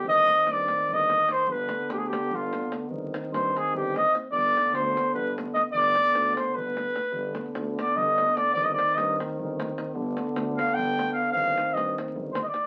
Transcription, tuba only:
\new Staff \with { instrumentName = "Tuba" } { \clef bass \time 7/8 \tempo 4 = 149 g,,4 g,4 g,,4. | g,,4 d,4 g,,4. | g,,4 g,4 g,,4. | g,,4 d,4 g,,4. |
g,,4 d,4 g,,4. | g,,4 d,4 g,,4. | g,,4 g,4 g,,4. | g,,4 d,4 g,,4. |
g,,4 g,4 g,,4. | }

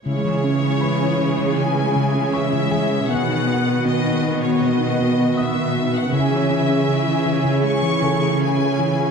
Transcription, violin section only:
\new Staff \with { instrumentName = "Violin section" } { \time 4/4 \key cis \minor \tempo 4 = 79 cis''2 gis''4 e''4 | fis''4 dis''8. cis''16 dis''4 e''8. fis''16 | e''2 cis'''4 gis''4 | }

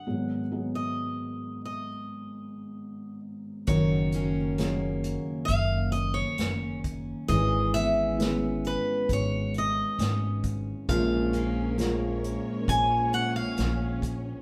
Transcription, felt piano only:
<<
  \new Staff \with { instrumentName = "Felt piano" } { \time 4/4 \key fis \major \tempo 4 = 67 <fis b dis' gis'>8 <fis b dis' gis'>4. r2 | <fis cis' dis' ais'>8. r16 <fis cis' dis' gis'>4. r4. | <gis cis' e' b'>8. r16 <gis cis' e' b'>4. r4. | <gis cis' eis' ais'>8. r16 <gis cis' eis' ais'>4. r4. | }
  \new Staff \with { instrumentName = "Felt piano" } { \clef bass \time 4/4 \key fis \major <gis,, gis,>1 | <fis,, fis,>1 | <gis,, gis,>1 | <ais,, ais,>1 | }
>>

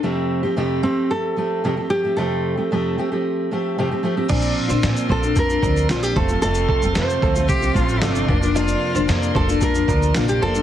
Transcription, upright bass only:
\new Staff \with { instrumentName = "Upright bass" } { \clef bass \time 4/4 \key bes \major \tempo 4 = 113 r1 | r1 | bes,,8 r16 bes,,16 bes,8 bes,,8 f,8 d,8 bes,,8 f,,8 | f,,8 r16 f,,16 f,8 d,8 c,8 a,,8 g,,8 f,,8~ |
f,,8 r16 f,,16 f,8 f,,8 f,8 d,8 bes,,8 f,,8 | }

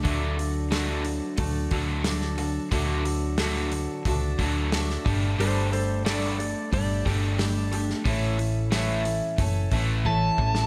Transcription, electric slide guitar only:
\new Staff \with { instrumentName = "Electric slide guitar" } { \time 4/4 \key d \major \tempo 4 = 90 r1 | r1 | <a' c''>8 <a' c''>8 <a' d''>8 <a' d''>8 d''8 r4. | r1 | }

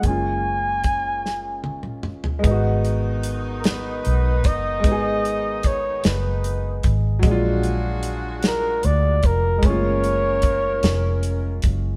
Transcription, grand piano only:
\new Staff \with { instrumentName = "Grand piano" } { \time 6/8 \key gis \dorian \tempo 4. = 50 <gis ais cis' eis'>2. | <gis b dis' fis'>2. | <gis b dis' gis'>2. | <fis gis d' eis'>2. |
<gis a ais cis' eis'>2. | }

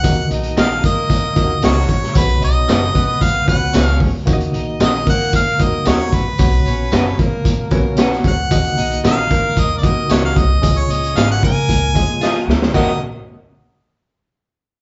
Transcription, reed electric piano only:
\new Staff \with { instrumentName = "Reed electric piano" } { \time 4/4 \key ees \minor \tempo 4 = 113 <ees bes ees' ges' ees''>4. r4 <bes ees' f' ges' ees''>4 r8 | <b, b cis' fis' cis''>4. r4 <b cis' fis' cis''>4 r8 | <ees bes ees' ges' des'' ees''>4. r4 <bes ees' ges' ees''>4 r8 | <b, b cis' fis' cis''>4. r4 <b cis' fis' cis''>4 r8 |
<ees bes ees' ges' ees''>4. r4 <bes ees' ges' ees''>4 r8 | <des des' f' aes' ees''>4. r4 <des' f' aes' ees''>4 r8 | <ees, bes ges' ees''>8 r2. r8 | }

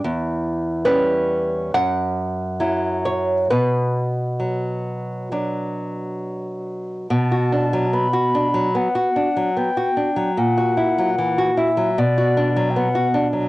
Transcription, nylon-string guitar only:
\new Staff \with { instrumentName = "Nylon-string guitar" } { \time 4/4 \key b \minor \tempo 4 = 73 << { r4 b'4 fis''4. cis''8 | b'2.~ b'8 r8 | r1 | r1 | } \\ { e,4 <g cis'>4 fis,4 <fis e'>4 | b,4 fis4 <fis d'>2 | b,16 fis'16 d'16 fis16 b16 fis'16 d'16 fis16 b16 fis'16 d'16 fis16 b16 fis'16 d'16 fis16 | ais,16 fis'16 e'16 fis16 e16 fis'16 e'16 fis16 b,16 fis'16 d'16 fis16 b16 fis'16 d'16 fis16 | } >> }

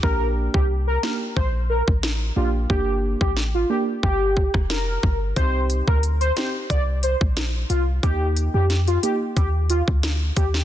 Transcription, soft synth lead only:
\new Staff \with { instrumentName = "Soft synth lead" } { \time 4/4 \key g \minor \tempo 4 = 90 bes'8 r16 g'16 r16 bes'16 bes'16 r16 c''16 r16 bes'16 r8. f'16 r16 | g'8 r16 g'16 r16 f'16 g'16 r16 g'8. r16 bes'8. r16 | c''8 r16 bes'16 r16 c''16 c''16 r16 d''16 r16 c''16 r8. f'16 r16 | g'8 r16 g'16 r16 f'16 g'16 r16 g'16 r16 f'16 r8. g'16 r16 | }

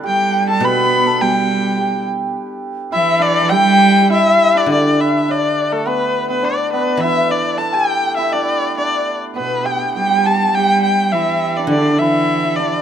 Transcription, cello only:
\new Staff \with { instrumentName = "Cello" } { \clef bass \time 2/4 \tempo 4 = 103 g4 b4 | g4. r8 | r4 e4 | g4. r8 |
r2 | r2 | r2 | r2 |
b,4 g4 | g4 e4 | d8 e4. | }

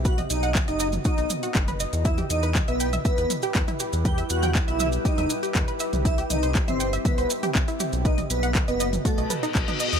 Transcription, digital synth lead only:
\new Staff \with { instrumentName = "Digital synth lead" } { \time 4/4 \key e \minor \tempo 4 = 120 fis''16 r16 dis''8 r16 dis''8 r16 dis''8 r4. | e''16 r16 dis''8 r16 b'8 r16 b'8 r4. | g''16 r16 fis''8 r16 e''8 r16 dis''8 r4. | e''16 r16 dis''8 r16 c''8 r16 b'8 r4. |
dis''16 r16 b'8 r16 b'8 r16 a'8 r4. | }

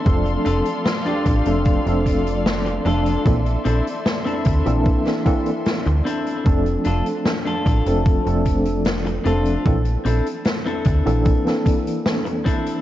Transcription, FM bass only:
\new Staff \with { instrumentName = "FM bass" } { \clef bass \time 4/4 \key f \major \tempo 4 = 75 f,,8 f,,16 r8. a,,16 f,,8 f,,4~ f,,16 f,,8 | bes,,8 bes,,16 r8. d,16 bes,,8 r4 d,16 r8 | f,,8 f,,16 r8. a,,16 f,,8 f,,4~ f,,16 f,,8 | bes,,8 bes,,16 r8. d,16 bes,,8 r4. r16 | }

